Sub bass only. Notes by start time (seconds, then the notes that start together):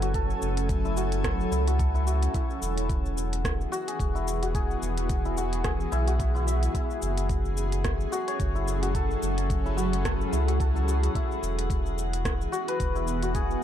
Already playing: F#1
0.42 F#1
1.51 C#2
2.62 E1
4.00 E1
4.82 E1
5.92 B1
7.02 F#1
8.40 F#1
9.22 F#1
10.33 C#2
11.43 E1
12.80 E1